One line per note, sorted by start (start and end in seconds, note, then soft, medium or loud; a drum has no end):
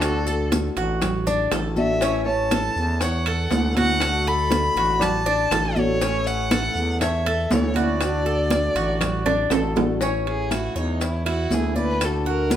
0.00 0.70 D2 loud
0.00 1.00 D3 medium
0.00 1.01 A3 medium
0.00 0.52 D4 medium
0.00 1.00 D4 medium
0.00 0.25 F#4 medium
0.00 1.01 F#4 medium
0.00 0.53 A4 medium
0.00 high bongo medium
0.00 high conga soft
0.00 high timbale loud
0.00 claves medium
0.00 maracas medium
0.27 0.75 A4 medium
0.27 high conga soft
0.27 maracas medium
0.52 high bongo medium
0.52 high conga loud
0.52 high timbale medium
0.52 low timbale medium
0.52 maracas medium
0.77 1.48 A1 loud
0.77 1.25 F#4 medium
0.77 high bongo soft
0.77 high conga soft
0.77 high timbale medium
0.77 maracas soft
1.01 muted steel-string acoustic guitar stroke medium
1.01 high bongo medium
1.01 high conga soft
1.01 low conga medium
1.01 high timbale medium
1.01 claves medium
1.01 maracas medium
1.27 1.51 D4 medium
1.27 high bongo soft
1.27 high conga soft
1.27 low conga medium
1.27 maracas medium
1.51 2.70 A1 medium
1.51 1.76 D3 soft
1.51 1.76 A3 soft
1.51 1.76 D4 medium
1.51 1.75 F#4 soft
1.51 2.00 A4 medium
1.51 high bongo medium
1.51 low bongo medium
1.51 high conga soft
1.51 high timbale medium
1.51 low timbale medium
1.51 claves medium
1.51 maracas medium
1.76 2.00 A3 medium
1.76 2.01 D4 medium
1.76 2.00 F#4 medium
1.76 2.23 A4 medium
1.76 2.23 E5 loud
1.76 high bongo soft
1.76 high conga medium
1.76 maracas soft
2.01 3.00 E3 medium
2.01 3.01 A3 medium
2.01 2.50 C#4 medium
2.01 3.01 C#4 medium
2.01 3.01 E4 medium
2.01 high bongo medium
2.01 high timbale medium
2.01 maracas medium
2.26 3.01 C#5 medium
2.26 3.03 A5 loud
2.26 high conga soft
2.51 3.00 A4 medium
2.51 high bongo medium
2.51 high conga medium
2.51 high timbale loud
2.51 low timbale medium
2.51 claves medium
2.51 maracas medium
2.76 3.47 E2 loud
2.76 maracas soft
3.01 3.74 A4 medium
3.01 3.26 C#5 medium
3.01 3.76 F#5 medium
3.01 muted steel-string acoustic guitar stroke medium
3.01 high bongo medium
3.01 high conga soft
3.01 high timbale medium
3.01 maracas medium
3.26 3.75 A4 medium
3.26 high conga soft
3.26 high timbale loud
3.26 claves medium
3.51 4.70 D2 loud
3.51 3.76 E3 medium
3.51 3.76 A3 soft
3.51 3.76 C#4 medium
3.51 3.75 E4 medium
3.51 high bongo medium
3.51 low bongo medium
3.51 high conga medium
3.51 low timbale medium
3.51 maracas medium
3.75 4.01 A3 medium
3.75 4.01 C#4 medium
3.75 4.00 E4 medium
3.75 4.25 F#4 medium
3.75 4.25 A4 medium
3.75 4.28 F#5 loud
3.75 high conga medium
3.75 high timbale medium
3.75 maracas soft
4.00 5.00 D3 medium
4.00 5.01 A3 medium
4.00 5.01 D4 medium
4.00 5.01 F#4 medium
4.00 high bongo medium
4.00 high conga soft
4.00 high timbale loud
4.00 claves medium
4.00 maracas medium
4.25 4.75 A4 medium
4.25 4.98 D5 medium
4.25 5.03 B5 loud
4.25 high conga soft
4.50 high bongo medium
4.50 high conga loud
4.50 high timbale medium
4.50 low timbale medium
4.50 maracas medium
4.76 5.47 A1 loud
4.76 5.25 F#4 medium
4.76 high bongo soft
4.76 high conga soft
4.76 high timbale medium
4.76 maracas soft
4.99 5.74 D5 medium
4.99 5.79 A5 loud
4.99 muted steel-string acoustic guitar stroke medium
4.99 high bongo medium
4.99 high conga soft
4.99 low conga medium
4.99 high timbale loud
4.99 claves medium
4.99 maracas medium
5.26 5.51 D4 loud
5.26 high bongo soft
5.26 high conga soft
5.51 6.70 A1 loud
5.51 5.76 D3 soft
5.51 5.76 A3 medium
5.51 5.75 D4 medium
5.51 5.75 F#4 medium
5.51 6.00 A4 medium
5.51 high bongo medium
5.51 low bongo medium
5.51 high conga soft
5.51 high timbale medium
5.51 low timbale medium
5.51 claves medium
5.51 maracas medium
5.74 6.01 A3 medium
5.74 6.01 D4 medium
5.74 6.24 E4 medium
5.74 6.00 F#4 medium
5.74 6.29 C#5 loud
5.74 high bongo soft
5.74 high conga medium
5.74 maracas soft
6.01 7.00 E3 medium
6.01 7.01 A3 medium
6.01 6.50 C#4 medium
6.01 7.01 C#4 medium
6.01 7.01 E4 medium
6.01 high bongo medium
6.01 high conga soft
6.01 high timbale medium
6.01 maracas medium
6.24 7.00 A4 medium
6.24 7.01 F#5 loud
6.24 high conga soft
6.24 maracas medium
6.51 7.00 A4 medium
6.51 high bongo medium
6.51 high conga loud
6.51 high timbale loud
6.51 low timbale medium
6.51 claves medium
6.51 maracas medium
6.75 7.47 E2 loud
6.75 maracas soft
7.01 7.50 A4 medium
7.01 7.26 C#5 medium
7.01 7.54 E5 medium
7.01 muted steel-string acoustic guitar stroke medium
7.01 high bongo medium
7.01 high conga soft
7.01 high timbale medium
7.01 maracas medium
7.26 7.75 A4 medium
7.26 high conga soft
7.26 high timbale medium
7.26 claves medium
7.50 8.70 D2 loud
7.50 7.76 E3 medium
7.50 7.76 A3 soft
7.50 7.76 C#4 soft
7.50 7.74 E4 medium
7.50 7.76 E4 medium
7.50 7.79 C#5 medium
7.50 high bongo medium
7.50 low bongo medium
7.50 high conga loud
7.50 low timbale medium
7.50 maracas medium
7.74 8.01 E4 medium
7.74 9.50 F#4 medium
7.74 8.25 F#4 medium
7.74 9.52 D5 loud
7.74 high conga medium
7.74 high timbale medium
7.74 maracas soft
7.78 8.01 A3 medium
7.78 8.01 C#4 medium
8.01 9.00 D3 medium
8.01 9.01 A3 medium
8.01 9.01 D4 medium
8.01 9.01 F#4 medium
8.01 high bongo medium
8.01 high conga soft
8.01 high timbale medium
8.01 claves medium
8.01 maracas medium
8.26 8.75 A4 medium
8.26 high conga soft
8.50 high bongo medium
8.50 high conga loud
8.50 high timbale medium
8.50 low timbale medium
8.50 maracas medium
8.76 9.47 A1 loud
8.76 9.25 F#4 medium
8.76 high bongo soft
8.76 high conga soft
8.76 high timbale medium
8.76 maracas soft
9.01 muted steel-string acoustic guitar stroke medium
9.01 high bongo medium
9.01 high conga soft
9.01 low conga medium
9.01 high timbale loud
9.01 claves medium
9.01 maracas medium
9.26 9.50 D4 medium
9.26 high bongo soft
9.26 high conga soft
9.26 low conga medium
9.26 high timbale loud
9.50 10.70 A1 loud
9.50 9.75 D3 soft
9.50 9.76 A3 soft
9.50 9.76 D4 medium
9.50 9.75 F#4 medium
9.50 10.00 A4 medium
9.50 high bongo medium
9.50 low bongo medium
9.50 high conga soft
9.50 high timbale loud
9.50 claves medium
9.50 maracas medium
9.76 10.00 A3 medium
9.76 10.01 D4 medium
9.76 10.00 F#4 medium
9.76 high bongo soft
9.76 high conga medium
9.76 low timbale loud
9.76 maracas soft
10.00 11.00 E3 medium
10.00 11.02 A3 medium
10.00 10.50 C#4 medium
10.00 11.01 C#4 medium
10.00 11.01 E4 medium
10.00 high bongo medium
10.00 high conga soft
10.00 maracas medium
10.25 10.55 G#4 medium
10.25 high bongo soft
10.25 high conga soft
10.25 high timbale medium
10.51 10.75 E4 medium
10.51 10.80 F#4 medium
10.51 high bongo medium
10.51 high conga medium
10.51 high timbale medium
10.51 claves medium
10.51 maracas medium
10.76 11.47 E2 loud
10.76 11.05 D#4 medium
10.76 11.25 C#5 medium
10.76 high bongo soft
10.76 high conga soft
10.76 maracas soft
11.01 11.27 E4 medium
11.01 muted steel-string acoustic guitar stroke medium
11.01 high bongo medium
11.01 high conga soft
11.01 high timbale medium
11.01 maracas medium
11.26 11.75 E4 medium
11.26 11.55 F#4 medium
11.26 high bongo soft
11.26 high conga soft
11.26 high timbale loud
11.26 claves medium
11.50 12.56 D2 medium
11.50 11.75 E3 soft
11.50 11.76 A3 soft
11.50 11.76 C#4 soft
11.50 11.75 E4 soft
11.50 11.78 G#4 medium
11.50 high bongo soft
11.50 low bongo medium
11.50 high conga medium
11.50 low timbale medium
11.50 maracas medium
11.76 12.02 A3 medium
11.76 12.01 C#4 medium
11.76 12.01 E4 medium
11.76 12.06 B4 loud
11.76 12.25 D5 medium
11.76 high conga medium
11.76 maracas soft
12.01 12.56 D3 medium
12.01 12.56 A3 medium
12.01 12.56 D4 medium
12.01 12.56 F#4 medium
12.01 12.27 A4 medium
12.01 high bongo medium
12.01 high conga soft
12.01 high timbale loud
12.01 claves medium
12.01 maracas medium
12.26 12.56 F#4 medium
12.26 12.55 A#4 medium
12.26 high bongo soft
12.26 high conga soft
12.50 high bongo medium
12.50 high conga loud
12.50 high timbale medium
12.50 maracas medium